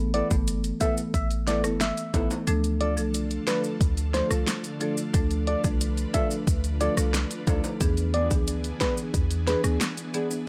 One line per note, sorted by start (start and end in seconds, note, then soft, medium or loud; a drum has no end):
0.00 0.23 A1 loud
0.14 0.33 B3 medium
0.14 0.33 E4 loud
0.14 0.34 A4 medium
0.14 0.28 D5 medium
0.14 closed hi-hat medium
0.30 0.73 G1 loud
0.30 0.77 E3 medium
0.30 0.77 A3 medium
0.30 0.77 B3 medium
0.30 0.77 A4 medium
0.30 kick loud
0.30 maracas medium
0.47 closed hi-hat medium
0.47 maracas medium
0.64 closed hi-hat medium
0.64 maracas soft
0.80 1.11 E3 medium
0.80 1.11 A3 medium
0.80 1.00 B3 medium
0.80 1.11 B3 medium
0.80 1.00 E4 medium
0.80 1.12 A4 medium
0.80 1.00 A4 loud
0.80 0.95 E5 medium
0.80 kick medium
0.80 closed hi-hat medium
0.80 maracas medium
0.97 maracas medium
1.14 1.66 A1 loud
1.14 1.28 E5 medium
1.14 kick medium
1.14 closed hi-hat medium
1.14 maracas medium
1.31 closed hi-hat medium
1.31 maracas medium
1.47 1.69 E3 medium
1.47 1.69 A3 medium
1.47 1.64 B3 medium
1.47 1.69 B3 medium
1.47 1.63 E4 medium
1.47 1.69 A4 medium
1.47 1.63 A4 medium
1.47 1.61 D5 medium
1.47 snare medium
1.47 closed hi-hat medium
1.47 maracas medium
1.64 1.92 G1 medium
1.64 1.79 B3 medium
1.64 1.79 E4 medium
1.64 1.79 A4 medium
1.64 cross-stick loud
1.64 maracas medium
1.81 2.28 E5 medium
1.81 finger snap medium
1.81 snare loud
1.81 closed hi-hat medium
1.81 maracas medium
1.97 closed hi-hat medium
1.97 maracas medium
2.14 2.28 A1 loud
2.14 2.36 E3 medium
2.14 2.36 A3 medium
2.14 2.33 B3 medium
2.14 2.36 B3 medium
2.14 2.33 E4 medium
2.14 2.36 A4 medium
2.14 2.34 A4 loud
2.14 kick medium
2.14 closed hi-hat medium
2.14 high timbale medium
2.14 maracas medium
2.31 high timbale medium
2.31 maracas medium
2.47 2.99 D2 loud
2.47 7.77 D3 medium
2.47 2.69 F3 medium
2.47 2.69 A3 medium
2.47 10.43 D4 medium
2.47 2.69 D4 medium
2.47 7.77 F4 medium
2.47 5.11 A4 medium
2.47 2.69 A4 loud
2.47 closed hi-hat medium
2.47 maracas medium
2.64 closed hi-hat medium
2.64 maracas medium
2.80 2.99 D4 medium
2.80 3.00 F4 medium
2.80 3.00 A4 medium
2.80 2.95 D5 medium
2.80 closed hi-hat medium
2.97 3.39 C2 medium
2.97 3.43 F3 medium
2.97 3.43 A3 medium
2.97 3.44 D4 medium
2.97 3.44 A4 medium
2.97 maracas medium
3.14 closed hi-hat medium
3.14 maracas medium
3.31 closed hi-hat medium
3.31 maracas soft
3.47 3.78 F3 medium
3.47 3.78 A3 medium
3.47 3.66 D4 medium
3.47 3.78 D4 medium
3.47 3.67 F4 medium
3.47 3.78 A4 medium
3.47 3.67 A4 medium
3.47 3.61 B4 medium
3.47 finger snap medium
3.47 snare loud
3.47 closed hi-hat medium
3.47 maracas medium
3.64 maracas medium
3.81 4.22 D2 loud
3.81 kick medium
3.81 closed hi-hat medium
3.81 maracas medium
3.97 closed hi-hat medium
3.97 maracas medium
4.14 4.36 F3 medium
4.14 4.36 A3 medium
4.14 4.31 D4 medium
4.14 4.36 D4 medium
4.14 4.30 F4 medium
4.14 4.36 A4 medium
4.14 4.29 A4 medium
4.14 4.28 C5 loud
4.14 snare medium
4.14 closed hi-hat medium
4.14 maracas soft
4.30 4.45 C2 medium
4.30 4.46 D4 medium
4.30 4.46 F4 medium
4.30 4.45 A4 medium
4.30 cross-stick loud
4.30 maracas medium
4.47 finger snap medium
4.47 snare loud
4.47 closed hi-hat medium
4.47 maracas medium
4.64 closed hi-hat medium
4.64 maracas medium
4.80 5.11 F3 medium
4.80 5.11 A3 medium
4.80 5.00 D4 medium
4.80 5.11 D4 medium
4.80 4.97 F4 medium
4.80 5.12 A4 medium
4.80 4.96 A4 medium
4.80 closed hi-hat medium
4.80 maracas medium
4.97 muted nylon-string guitar stroke soft
4.97 maracas medium
5.14 5.56 D2 loud
5.14 5.36 F3 loud
5.14 5.36 A3 medium
5.14 5.36 D4 medium
5.14 5.36 A4 loud
5.14 7.78 B4 medium
5.14 kick loud
5.14 closed hi-hat medium
5.14 maracas medium
5.31 closed hi-hat medium
5.31 maracas medium
5.47 5.66 D4 medium
5.47 5.67 F4 medium
5.47 5.67 A4 medium
5.47 5.61 D5 medium
5.47 closed hi-hat medium
5.64 6.06 C2 loud
5.64 6.10 F3 medium
5.64 6.10 A3 medium
5.64 6.10 D4 medium
5.64 6.10 A4 medium
5.64 kick loud
5.64 maracas medium
5.81 closed hi-hat medium
5.81 maracas medium
5.97 closed hi-hat medium
5.97 maracas soft
6.14 6.45 F3 medium
6.14 6.45 A3 medium
6.14 6.33 D4 medium
6.14 6.45 D4 medium
6.14 6.33 F4 medium
6.14 6.45 A4 medium
6.14 6.34 A4 medium
6.14 6.28 E5 medium
6.14 kick medium
6.14 closed hi-hat medium
6.14 maracas medium
6.31 maracas medium
6.47 6.89 D2 loud
6.47 kick medium
6.47 closed hi-hat medium
6.47 maracas medium
6.64 closed hi-hat medium
6.64 maracas medium
6.80 7.02 F3 medium
6.80 7.02 A3 medium
6.80 6.97 D4 medium
6.80 7.03 D4 medium
6.80 6.97 F4 loud
6.80 7.03 A4 medium
6.80 6.96 A4 loud
6.80 6.95 D5 medium
6.80 closed hi-hat medium
6.80 maracas medium
6.97 7.25 C2 loud
6.97 7.13 D4 medium
6.97 7.12 F4 medium
6.97 7.12 A4 medium
6.97 cross-stick loud
6.97 maracas medium
7.14 finger snap medium
7.14 snare loud
7.14 closed hi-hat medium
7.14 maracas medium
7.31 closed hi-hat medium
7.31 maracas medium
7.47 7.61 D2 loud
7.47 7.69 F3 medium
7.47 7.69 A3 medium
7.47 7.66 D4 medium
7.47 7.69 D4 medium
7.47 7.67 F4 medium
7.47 7.69 A4 medium
7.47 7.67 A4 loud
7.47 kick medium
7.47 closed hi-hat medium
7.47 high timbale medium
7.47 maracas medium
7.64 high timbale medium
7.64 maracas medium
7.80 8.32 E2 loud
7.80 8.02 E3 loud
7.80 10.45 E3 medium
7.80 8.02 B3 medium
7.80 10.45 B3 medium
7.80 8.03 D4 medium
7.80 10.45 G#4 medium
7.80 8.03 G#4 loud
7.80 kick loud
7.80 closed hi-hat medium
7.80 maracas medium
7.97 closed hi-hat medium
7.97 maracas medium
8.14 8.33 B3 medium
8.14 8.33 D4 medium
8.14 8.34 G#4 medium
8.14 8.28 D5 medium
8.14 closed hi-hat medium
8.30 8.73 D2 medium
8.30 8.77 E3 medium
8.30 8.77 B3 medium
8.30 8.77 D4 medium
8.30 8.77 G#4 medium
8.30 kick medium
8.30 maracas medium
8.47 closed hi-hat medium
8.47 maracas medium
8.64 closed hi-hat medium
8.64 maracas soft
8.80 9.11 E3 medium
8.80 9.00 B3 medium
8.80 9.11 B3 medium
8.80 9.11 D4 medium
8.80 9.00 D4 medium
8.80 9.12 G#4 medium
8.80 9.00 G#4 medium
8.80 8.95 B4 medium
8.80 finger snap medium
8.80 kick medium
8.80 snare loud
8.80 closed hi-hat medium
8.80 maracas medium
8.97 maracas medium
9.14 9.56 E2 loud
9.14 kick medium
9.14 closed hi-hat medium
9.14 maracas medium
9.31 closed hi-hat medium
9.31 maracas medium
9.47 9.69 E3 medium
9.47 9.64 B3 medium
9.47 9.69 B3 medium
9.47 9.69 D4 medium
9.47 9.63 D4 medium
9.47 9.69 G#4 medium
9.47 9.63 G#4 medium
9.47 9.61 B4 medium
9.47 snare medium
9.47 closed hi-hat medium
9.47 maracas medium
9.64 9.78 D2 medium
9.64 9.79 B3 medium
9.64 9.79 D4 medium
9.64 9.79 G#4 medium
9.64 cross-stick loud
9.64 maracas medium
9.81 finger snap medium
9.81 snare loud
9.81 closed hi-hat medium
9.81 maracas medium
9.97 closed hi-hat medium
9.97 maracas medium
10.14 10.45 E3 medium
10.14 10.33 B3 medium
10.14 10.45 B3 medium
10.14 10.45 D4 medium
10.14 10.30 D4 medium
10.14 10.45 G#4 medium
10.14 10.29 G#4 medium
10.14 closed hi-hat medium
10.14 maracas medium
10.30 muted nylon-string guitar stroke soft
10.30 maracas medium